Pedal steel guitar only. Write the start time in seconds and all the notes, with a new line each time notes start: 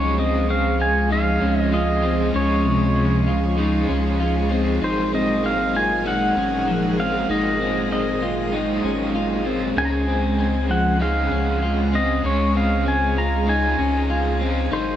Already playing: C#5
0.19 D#5
0.50 F5
0.82 G#5
1.12 F5
1.60 D#5
1.74 D#5
2.36 C#5
4.84 C5
5.15 D#5
5.46 F5
5.77 G#5
6.07 F#5
7.00 F5
7.31 D#5
7.92 D#5
9.78 G#5
9.85 A#5
9.92 G#5
10.71 F#5
11.02 F5
11.95 D#5
12.26 C#5
12.57 F5
12.88 G#5
13.18 A#5
13.49 G#5
14.73 C5